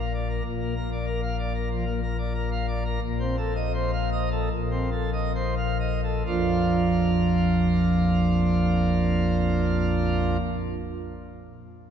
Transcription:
0, 0, Header, 1, 2, 480
1, 0, Start_track
1, 0, Key_signature, -2, "major"
1, 0, Tempo, 629591
1, 345, Time_signature, 4, 2, 24, 8
1, 1791, Tempo, 696864
1, 2751, Tempo, 766284
1, 3231, Tempo, 834492
1, 3711, Tempo, 923077
1, 4191, Tempo, 944882
1, 7054, End_track
2, 0, Start_track
2, 0, Title_t, "Pipe organ"
2, 0, Program_c, 0, 19
2, 0, Note_on_c, 0, 34, 82
2, 0, Note_on_c, 0, 46, 78
2, 0, Note_on_c, 0, 77, 73
2, 95, Note_off_c, 0, 77, 0
2, 106, Note_on_c, 0, 74, 67
2, 213, Note_off_c, 0, 74, 0
2, 227, Note_on_c, 0, 70, 59
2, 311, Note_off_c, 0, 46, 0
2, 312, Note_off_c, 0, 34, 0
2, 327, Note_off_c, 0, 70, 0
2, 345, Note_on_c, 0, 46, 84
2, 346, Note_on_c, 0, 34, 82
2, 464, Note_on_c, 0, 58, 71
2, 568, Note_off_c, 0, 58, 0
2, 580, Note_on_c, 0, 70, 79
2, 684, Note_off_c, 0, 70, 0
2, 700, Note_on_c, 0, 74, 69
2, 803, Note_off_c, 0, 74, 0
2, 814, Note_on_c, 0, 70, 79
2, 920, Note_off_c, 0, 70, 0
2, 935, Note_on_c, 0, 77, 100
2, 1041, Note_off_c, 0, 77, 0
2, 1057, Note_on_c, 0, 74, 77
2, 1163, Note_off_c, 0, 74, 0
2, 1176, Note_on_c, 0, 70, 73
2, 1283, Note_off_c, 0, 70, 0
2, 1296, Note_on_c, 0, 53, 72
2, 1405, Note_off_c, 0, 53, 0
2, 1415, Note_on_c, 0, 58, 71
2, 1526, Note_off_c, 0, 58, 0
2, 1542, Note_on_c, 0, 70, 73
2, 1652, Note_off_c, 0, 70, 0
2, 1663, Note_on_c, 0, 74, 82
2, 1776, Note_off_c, 0, 74, 0
2, 1786, Note_on_c, 0, 70, 83
2, 1890, Note_off_c, 0, 70, 0
2, 1903, Note_on_c, 0, 77, 89
2, 2007, Note_off_c, 0, 77, 0
2, 2019, Note_on_c, 0, 74, 92
2, 2124, Note_off_c, 0, 74, 0
2, 2136, Note_on_c, 0, 70, 79
2, 2229, Note_off_c, 0, 46, 0
2, 2230, Note_off_c, 0, 34, 0
2, 2238, Note_off_c, 0, 70, 0
2, 2254, Note_on_c, 0, 34, 97
2, 2256, Note_on_c, 0, 46, 107
2, 2375, Note_on_c, 0, 60, 83
2, 2485, Note_off_c, 0, 60, 0
2, 2498, Note_on_c, 0, 69, 89
2, 2610, Note_off_c, 0, 69, 0
2, 2622, Note_on_c, 0, 75, 83
2, 2736, Note_off_c, 0, 75, 0
2, 2748, Note_on_c, 0, 72, 94
2, 2854, Note_off_c, 0, 72, 0
2, 2866, Note_on_c, 0, 77, 116
2, 2973, Note_off_c, 0, 77, 0
2, 2985, Note_on_c, 0, 75, 91
2, 3094, Note_off_c, 0, 75, 0
2, 3109, Note_on_c, 0, 69, 79
2, 3218, Note_off_c, 0, 69, 0
2, 3219, Note_off_c, 0, 46, 0
2, 3220, Note_off_c, 0, 34, 0
2, 3232, Note_on_c, 0, 34, 91
2, 3232, Note_on_c, 0, 46, 90
2, 3347, Note_on_c, 0, 60, 79
2, 3452, Note_off_c, 0, 60, 0
2, 3464, Note_on_c, 0, 69, 77
2, 3573, Note_off_c, 0, 69, 0
2, 3587, Note_on_c, 0, 75, 78
2, 3698, Note_off_c, 0, 75, 0
2, 3713, Note_on_c, 0, 72, 77
2, 3816, Note_off_c, 0, 72, 0
2, 3829, Note_on_c, 0, 77, 81
2, 3935, Note_off_c, 0, 77, 0
2, 3947, Note_on_c, 0, 75, 76
2, 4056, Note_off_c, 0, 75, 0
2, 4070, Note_on_c, 0, 69, 67
2, 4170, Note_off_c, 0, 34, 0
2, 4170, Note_off_c, 0, 46, 0
2, 4173, Note_off_c, 0, 69, 0
2, 4190, Note_on_c, 0, 34, 74
2, 4190, Note_on_c, 0, 41, 61
2, 4190, Note_on_c, 0, 58, 62
2, 4190, Note_on_c, 0, 65, 64
2, 4191, Note_on_c, 0, 53, 60
2, 4191, Note_on_c, 0, 62, 59
2, 6273, Note_off_c, 0, 58, 0
2, 6274, Note_off_c, 0, 34, 0
2, 6274, Note_off_c, 0, 41, 0
2, 6274, Note_off_c, 0, 62, 0
2, 6274, Note_off_c, 0, 65, 0
2, 6275, Note_off_c, 0, 53, 0
2, 7054, End_track
0, 0, End_of_file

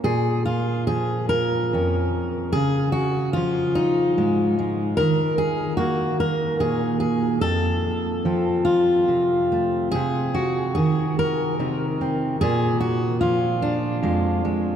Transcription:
0, 0, Header, 1, 2, 480
1, 0, Start_track
1, 0, Key_signature, -5, "minor"
1, 0, Tempo, 832178
1, 28, Time_signature, 6, 3, 24, 8
1, 1467, Tempo, 811908
1, 4347, Tempo, 834492
1, 6747, Tempo, 809717
1, 8627, End_track
2, 0, Start_track
2, 0, Title_t, "Steel-string acoustic guitar"
2, 0, Program_c, 0, 25
2, 22, Note_on_c, 0, 46, 68
2, 24, Note_on_c, 0, 68, 104
2, 260, Note_off_c, 0, 68, 0
2, 262, Note_on_c, 0, 65, 86
2, 500, Note_off_c, 0, 65, 0
2, 502, Note_on_c, 0, 68, 91
2, 510, Note_on_c, 0, 53, 55
2, 742, Note_off_c, 0, 68, 0
2, 744, Note_on_c, 0, 70, 103
2, 991, Note_off_c, 0, 46, 0
2, 999, Note_on_c, 0, 41, 59
2, 1006, Note_on_c, 0, 61, 44
2, 1437, Note_off_c, 0, 53, 0
2, 1445, Note_off_c, 0, 61, 0
2, 1454, Note_off_c, 0, 70, 0
2, 1456, Note_on_c, 0, 68, 109
2, 1470, Note_off_c, 0, 41, 0
2, 1473, Note_on_c, 0, 49, 71
2, 1689, Note_off_c, 0, 68, 0
2, 1691, Note_on_c, 0, 66, 94
2, 1931, Note_off_c, 0, 66, 0
2, 1933, Note_on_c, 0, 65, 93
2, 1951, Note_off_c, 0, 49, 0
2, 1951, Note_on_c, 0, 53, 59
2, 2182, Note_on_c, 0, 63, 93
2, 2430, Note_on_c, 0, 44, 62
2, 2433, Note_on_c, 0, 56, 48
2, 2661, Note_off_c, 0, 65, 0
2, 2667, Note_off_c, 0, 56, 0
2, 2674, Note_on_c, 0, 56, 49
2, 2879, Note_off_c, 0, 44, 0
2, 2880, Note_off_c, 0, 53, 0
2, 2901, Note_on_c, 0, 70, 116
2, 2904, Note_off_c, 0, 63, 0
2, 2910, Note_off_c, 0, 56, 0
2, 2916, Note_on_c, 0, 51, 75
2, 3142, Note_off_c, 0, 70, 0
2, 3144, Note_on_c, 0, 68, 100
2, 3372, Note_off_c, 0, 68, 0
2, 3374, Note_on_c, 0, 66, 89
2, 3386, Note_on_c, 0, 58, 61
2, 3619, Note_off_c, 0, 66, 0
2, 3629, Note_on_c, 0, 70, 99
2, 3864, Note_off_c, 0, 70, 0
2, 3865, Note_on_c, 0, 46, 59
2, 3867, Note_on_c, 0, 68, 96
2, 4095, Note_off_c, 0, 68, 0
2, 4102, Note_on_c, 0, 68, 88
2, 4318, Note_off_c, 0, 58, 0
2, 4344, Note_off_c, 0, 68, 0
2, 4346, Note_on_c, 0, 69, 115
2, 4347, Note_off_c, 0, 46, 0
2, 4351, Note_off_c, 0, 51, 0
2, 4352, Note_on_c, 0, 41, 71
2, 4827, Note_on_c, 0, 53, 56
2, 4831, Note_on_c, 0, 60, 44
2, 5054, Note_off_c, 0, 69, 0
2, 5056, Note_on_c, 0, 65, 89
2, 5306, Note_on_c, 0, 48, 60
2, 5557, Note_on_c, 0, 57, 46
2, 5761, Note_off_c, 0, 48, 0
2, 5763, Note_off_c, 0, 53, 0
2, 5766, Note_off_c, 0, 57, 0
2, 5783, Note_off_c, 0, 65, 0
2, 5785, Note_on_c, 0, 68, 107
2, 5792, Note_off_c, 0, 41, 0
2, 5802, Note_on_c, 0, 48, 74
2, 6030, Note_off_c, 0, 60, 0
2, 6032, Note_on_c, 0, 66, 86
2, 6257, Note_off_c, 0, 68, 0
2, 6264, Note_on_c, 0, 68, 88
2, 6277, Note_on_c, 0, 51, 57
2, 6278, Note_off_c, 0, 48, 0
2, 6506, Note_off_c, 0, 68, 0
2, 6518, Note_on_c, 0, 70, 97
2, 6745, Note_off_c, 0, 66, 0
2, 6750, Note_on_c, 0, 48, 59
2, 6754, Note_on_c, 0, 63, 46
2, 6998, Note_on_c, 0, 60, 46
2, 7201, Note_off_c, 0, 48, 0
2, 7202, Note_off_c, 0, 63, 0
2, 7204, Note_off_c, 0, 60, 0
2, 7230, Note_off_c, 0, 51, 0
2, 7231, Note_off_c, 0, 70, 0
2, 7234, Note_on_c, 0, 68, 111
2, 7241, Note_on_c, 0, 46, 73
2, 7466, Note_off_c, 0, 68, 0
2, 7469, Note_on_c, 0, 66, 84
2, 7705, Note_off_c, 0, 66, 0
2, 7707, Note_on_c, 0, 65, 82
2, 7716, Note_on_c, 0, 53, 57
2, 7954, Note_on_c, 0, 62, 85
2, 8193, Note_on_c, 0, 41, 62
2, 8194, Note_off_c, 0, 46, 0
2, 8197, Note_on_c, 0, 56, 46
2, 8427, Note_off_c, 0, 65, 0
2, 8432, Note_off_c, 0, 56, 0
2, 8442, Note_on_c, 0, 56, 47
2, 8627, Note_off_c, 0, 41, 0
2, 8627, Note_off_c, 0, 53, 0
2, 8627, Note_off_c, 0, 56, 0
2, 8627, Note_off_c, 0, 62, 0
2, 8627, End_track
0, 0, End_of_file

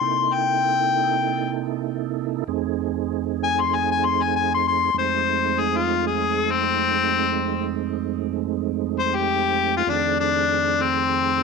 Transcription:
0, 0, Header, 1, 3, 480
1, 0, Start_track
1, 0, Tempo, 616016
1, 11, Time_signature, 4, 2, 24, 8
1, 8906, End_track
2, 0, Start_track
2, 0, Title_t, "Harmonica"
2, 0, Program_c, 0, 22
2, 0, Note_on_c, 0, 84, 78
2, 265, Note_on_c, 0, 79, 105
2, 277, Note_off_c, 0, 84, 0
2, 1190, Note_off_c, 0, 79, 0
2, 2678, Note_on_c, 0, 80, 91
2, 2808, Note_on_c, 0, 84, 78
2, 2820, Note_off_c, 0, 80, 0
2, 2922, Note_on_c, 0, 80, 76
2, 2934, Note_off_c, 0, 84, 0
2, 3032, Note_off_c, 0, 80, 0
2, 3052, Note_on_c, 0, 80, 76
2, 3156, Note_on_c, 0, 84, 81
2, 3168, Note_off_c, 0, 80, 0
2, 3292, Note_on_c, 0, 80, 74
2, 3304, Note_off_c, 0, 84, 0
2, 3379, Note_off_c, 0, 80, 0
2, 3398, Note_on_c, 0, 80, 76
2, 3510, Note_off_c, 0, 80, 0
2, 3540, Note_on_c, 0, 84, 87
2, 3623, Note_off_c, 0, 84, 0
2, 3644, Note_on_c, 0, 84, 101
2, 3862, Note_off_c, 0, 84, 0
2, 3885, Note_on_c, 0, 72, 92
2, 4363, Note_on_c, 0, 68, 82
2, 4374, Note_off_c, 0, 72, 0
2, 4497, Note_on_c, 0, 65, 73
2, 4509, Note_off_c, 0, 68, 0
2, 4715, Note_off_c, 0, 65, 0
2, 4729, Note_on_c, 0, 68, 80
2, 5075, Note_on_c, 0, 60, 103
2, 5087, Note_off_c, 0, 68, 0
2, 5995, Note_off_c, 0, 60, 0
2, 7008, Note_on_c, 0, 72, 85
2, 7133, Note_on_c, 0, 67, 89
2, 7145, Note_off_c, 0, 72, 0
2, 7585, Note_off_c, 0, 67, 0
2, 7610, Note_on_c, 0, 65, 85
2, 7710, Note_on_c, 0, 62, 82
2, 7722, Note_off_c, 0, 65, 0
2, 7934, Note_off_c, 0, 62, 0
2, 7950, Note_on_c, 0, 62, 93
2, 8432, Note_on_c, 0, 60, 90
2, 8444, Note_off_c, 0, 62, 0
2, 8906, Note_off_c, 0, 60, 0
2, 8906, End_track
3, 0, Start_track
3, 0, Title_t, "Tonewheel organ"
3, 0, Program_c, 1, 16
3, 6, Note_on_c, 1, 48, 57
3, 8, Note_on_c, 1, 58, 52
3, 9, Note_on_c, 1, 63, 55
3, 11, Note_on_c, 1, 64, 52
3, 13, Note_on_c, 1, 69, 67
3, 1898, Note_off_c, 1, 48, 0
3, 1900, Note_off_c, 1, 58, 0
3, 1900, Note_off_c, 1, 63, 0
3, 1901, Note_off_c, 1, 64, 0
3, 1902, Note_off_c, 1, 69, 0
3, 1929, Note_on_c, 1, 41, 69
3, 1931, Note_on_c, 1, 57, 62
3, 1931, Note_on_c, 1, 60, 64
3, 1933, Note_on_c, 1, 63, 60
3, 1934, Note_on_c, 1, 68, 73
3, 3820, Note_off_c, 1, 41, 0
3, 3821, Note_off_c, 1, 57, 0
3, 3821, Note_off_c, 1, 60, 0
3, 3822, Note_off_c, 1, 63, 0
3, 3822, Note_off_c, 1, 68, 0
3, 3849, Note_on_c, 1, 57, 50
3, 3850, Note_on_c, 1, 41, 54
3, 3851, Note_on_c, 1, 60, 54
3, 3852, Note_on_c, 1, 56, 63
3, 3852, Note_on_c, 1, 63, 49
3, 7659, Note_off_c, 1, 41, 0
3, 7659, Note_off_c, 1, 57, 0
3, 7660, Note_off_c, 1, 56, 0
3, 7660, Note_off_c, 1, 60, 0
3, 7660, Note_off_c, 1, 63, 0
3, 7687, Note_on_c, 1, 41, 59
3, 7689, Note_on_c, 1, 57, 52
3, 7690, Note_on_c, 1, 60, 53
3, 7692, Note_on_c, 1, 51, 54
3, 7692, Note_on_c, 1, 68, 64
3, 8906, Note_off_c, 1, 41, 0
3, 8906, Note_off_c, 1, 51, 0
3, 8906, Note_off_c, 1, 57, 0
3, 8906, Note_off_c, 1, 60, 0
3, 8906, Note_off_c, 1, 68, 0
3, 8906, End_track
0, 0, End_of_file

